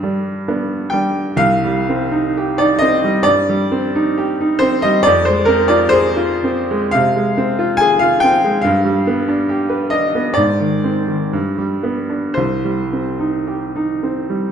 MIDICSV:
0, 0, Header, 1, 2, 480
1, 0, Start_track
1, 0, Key_signature, -3, "minor"
1, 0, Tempo, 909091
1, 741, Time_signature, 4, 2, 24, 8
1, 741, Tempo, 967742
1, 1221, Tempo, 891530
1, 3141, Tempo, 1001669
1, 3621, Tempo, 862069
1, 5541, Tempo, 952381
1, 6021, Tempo, 1032702
1, 6501, Tempo, 1088929
1, 7447, End_track
2, 0, Start_track
2, 0, Title_t, "Grand piano"
2, 0, Program_c, 0, 0
2, 0, Control_c, 0, 64, 127
2, 0, Note_on_c, 0, 43, 55
2, 0, Note_on_c, 0, 79, 69
2, 16, Note_on_c, 0, 55, 37
2, 17, Note_on_c, 0, 62, 43
2, 230, Note_off_c, 0, 55, 0
2, 230, Note_off_c, 0, 62, 0
2, 254, Note_on_c, 0, 59, 41
2, 255, Note_on_c, 0, 62, 43
2, 466, Note_off_c, 0, 79, 0
2, 469, Note_off_c, 0, 59, 0
2, 469, Note_off_c, 0, 62, 0
2, 474, Note_on_c, 0, 79, 85
2, 490, Note_on_c, 0, 55, 40
2, 493, Note_on_c, 0, 62, 46
2, 717, Note_off_c, 0, 43, 0
2, 720, Note_off_c, 0, 55, 0
2, 720, Note_on_c, 0, 36, 68
2, 721, Note_off_c, 0, 62, 0
2, 724, Note_on_c, 0, 77, 110
2, 733, Note_off_c, 0, 79, 0
2, 750, Control_c, 0, 64, 0
2, 842, Control_c, 0, 64, 127
2, 860, Note_on_c, 0, 55, 48
2, 984, Note_on_c, 0, 60, 50
2, 1054, Note_off_c, 0, 55, 0
2, 1095, Note_on_c, 0, 63, 47
2, 1174, Note_off_c, 0, 60, 0
2, 1222, Note_on_c, 0, 67, 54
2, 1291, Note_off_c, 0, 63, 0
2, 1334, Note_on_c, 0, 74, 87
2, 1336, Note_off_c, 0, 77, 0
2, 1345, Note_on_c, 0, 63, 53
2, 1420, Note_off_c, 0, 67, 0
2, 1444, Note_on_c, 0, 75, 94
2, 1462, Note_off_c, 0, 74, 0
2, 1462, Note_on_c, 0, 60, 55
2, 1540, Note_off_c, 0, 63, 0
2, 1582, Note_on_c, 0, 55, 49
2, 1658, Note_off_c, 0, 60, 0
2, 1676, Note_off_c, 0, 36, 0
2, 1684, Note_on_c, 0, 74, 102
2, 1697, Note_off_c, 0, 75, 0
2, 1699, Note_on_c, 0, 43, 52
2, 1716, Control_c, 0, 64, 0
2, 1777, Note_off_c, 0, 55, 0
2, 1815, Control_c, 0, 64, 127
2, 1824, Note_on_c, 0, 55, 53
2, 1896, Note_off_c, 0, 43, 0
2, 1945, Note_on_c, 0, 60, 52
2, 2020, Note_off_c, 0, 55, 0
2, 2073, Note_on_c, 0, 63, 55
2, 2141, Note_off_c, 0, 60, 0
2, 2193, Note_on_c, 0, 67, 59
2, 2265, Note_off_c, 0, 63, 0
2, 2316, Note_on_c, 0, 63, 46
2, 2384, Note_off_c, 0, 67, 0
2, 2414, Note_on_c, 0, 72, 99
2, 2419, Note_off_c, 0, 74, 0
2, 2430, Note_on_c, 0, 60, 59
2, 2504, Note_off_c, 0, 63, 0
2, 2541, Note_off_c, 0, 72, 0
2, 2541, Note_on_c, 0, 75, 89
2, 2552, Note_on_c, 0, 55, 55
2, 2619, Note_off_c, 0, 60, 0
2, 2652, Note_on_c, 0, 74, 109
2, 2662, Note_off_c, 0, 75, 0
2, 2668, Note_off_c, 0, 55, 0
2, 2671, Note_on_c, 0, 41, 69
2, 2676, Control_c, 0, 64, 0
2, 2772, Note_on_c, 0, 72, 85
2, 2773, Control_c, 0, 64, 127
2, 2776, Note_off_c, 0, 74, 0
2, 2784, Note_on_c, 0, 56, 49
2, 2880, Note_on_c, 0, 70, 91
2, 2895, Note_off_c, 0, 72, 0
2, 2896, Note_on_c, 0, 60, 50
2, 2971, Note_off_c, 0, 56, 0
2, 3003, Note_on_c, 0, 74, 89
2, 3009, Note_off_c, 0, 70, 0
2, 3011, Note_on_c, 0, 65, 51
2, 3089, Note_off_c, 0, 60, 0
2, 3116, Note_on_c, 0, 72, 106
2, 3133, Note_off_c, 0, 74, 0
2, 3133, Note_on_c, 0, 68, 62
2, 3205, Note_off_c, 0, 65, 0
2, 3251, Note_on_c, 0, 65, 53
2, 3325, Note_off_c, 0, 68, 0
2, 3382, Note_on_c, 0, 60, 54
2, 3453, Note_off_c, 0, 65, 0
2, 3510, Note_on_c, 0, 56, 56
2, 3576, Note_off_c, 0, 60, 0
2, 3604, Note_off_c, 0, 41, 0
2, 3609, Note_on_c, 0, 77, 103
2, 3610, Note_off_c, 0, 72, 0
2, 3623, Note_on_c, 0, 48, 59
2, 3632, Control_c, 0, 64, 0
2, 3702, Note_off_c, 0, 56, 0
2, 3728, Control_c, 0, 64, 127
2, 3747, Note_on_c, 0, 56, 50
2, 3823, Note_off_c, 0, 48, 0
2, 3864, Note_on_c, 0, 60, 57
2, 3938, Note_off_c, 0, 56, 0
2, 3982, Note_on_c, 0, 65, 56
2, 4053, Note_off_c, 0, 60, 0
2, 4084, Note_on_c, 0, 80, 117
2, 4095, Note_off_c, 0, 77, 0
2, 4106, Note_on_c, 0, 68, 58
2, 4171, Note_off_c, 0, 65, 0
2, 4208, Note_on_c, 0, 77, 98
2, 4210, Note_off_c, 0, 80, 0
2, 4222, Note_on_c, 0, 65, 52
2, 4292, Note_off_c, 0, 68, 0
2, 4324, Note_on_c, 0, 79, 106
2, 4332, Note_off_c, 0, 77, 0
2, 4343, Note_on_c, 0, 60, 57
2, 4410, Note_off_c, 0, 65, 0
2, 4458, Note_on_c, 0, 56, 53
2, 4531, Note_off_c, 0, 60, 0
2, 4554, Note_on_c, 0, 77, 89
2, 4570, Note_off_c, 0, 79, 0
2, 4570, Note_on_c, 0, 43, 69
2, 4577, Note_off_c, 0, 56, 0
2, 4586, Control_c, 0, 64, 0
2, 4666, Control_c, 0, 64, 127
2, 4685, Note_on_c, 0, 55, 53
2, 4808, Note_on_c, 0, 59, 54
2, 4878, Note_off_c, 0, 55, 0
2, 4926, Note_on_c, 0, 62, 53
2, 4998, Note_off_c, 0, 59, 0
2, 5042, Note_on_c, 0, 67, 56
2, 5115, Note_off_c, 0, 62, 0
2, 5155, Note_on_c, 0, 71, 51
2, 5235, Note_off_c, 0, 67, 0
2, 5270, Note_on_c, 0, 75, 83
2, 5276, Note_off_c, 0, 77, 0
2, 5284, Note_on_c, 0, 62, 50
2, 5356, Note_off_c, 0, 71, 0
2, 5409, Note_on_c, 0, 59, 50
2, 5487, Note_off_c, 0, 62, 0
2, 5513, Note_on_c, 0, 74, 93
2, 5515, Note_off_c, 0, 43, 0
2, 5529, Note_on_c, 0, 44, 62
2, 5532, Note_off_c, 0, 75, 0
2, 5539, Note_off_c, 0, 59, 0
2, 5548, Control_c, 0, 64, 0
2, 5631, Control_c, 0, 64, 127
2, 5649, Note_on_c, 0, 51, 46
2, 5770, Note_on_c, 0, 60, 40
2, 5845, Note_off_c, 0, 51, 0
2, 5890, Note_on_c, 0, 51, 42
2, 5967, Note_off_c, 0, 60, 0
2, 6001, Note_off_c, 0, 44, 0
2, 6016, Note_off_c, 0, 51, 0
2, 6016, Note_on_c, 0, 43, 57
2, 6029, Control_c, 0, 64, 0
2, 6123, Control_c, 0, 64, 127
2, 6131, Note_on_c, 0, 55, 41
2, 6250, Note_on_c, 0, 59, 45
2, 6324, Note_off_c, 0, 55, 0
2, 6373, Note_on_c, 0, 62, 39
2, 6448, Note_off_c, 0, 59, 0
2, 6484, Note_off_c, 0, 43, 0
2, 6486, Note_on_c, 0, 72, 74
2, 6489, Note_off_c, 0, 74, 0
2, 6499, Note_off_c, 0, 62, 0
2, 6500, Note_on_c, 0, 36, 52
2, 6510, Control_c, 0, 64, 0
2, 6608, Control_c, 0, 64, 127
2, 6622, Note_on_c, 0, 55, 35
2, 6746, Note_on_c, 0, 60, 37
2, 6816, Note_off_c, 0, 55, 0
2, 6862, Note_on_c, 0, 63, 36
2, 6939, Note_off_c, 0, 60, 0
2, 6986, Note_on_c, 0, 67, 38
2, 7057, Note_off_c, 0, 63, 0
2, 7111, Note_on_c, 0, 63, 41
2, 7177, Note_off_c, 0, 67, 0
2, 7232, Note_on_c, 0, 60, 34
2, 7298, Note_off_c, 0, 63, 0
2, 7349, Note_on_c, 0, 55, 35
2, 7416, Note_off_c, 0, 60, 0
2, 7442, Note_off_c, 0, 36, 0
2, 7447, Note_off_c, 0, 55, 0
2, 7447, Note_off_c, 0, 72, 0
2, 7447, End_track
0, 0, End_of_file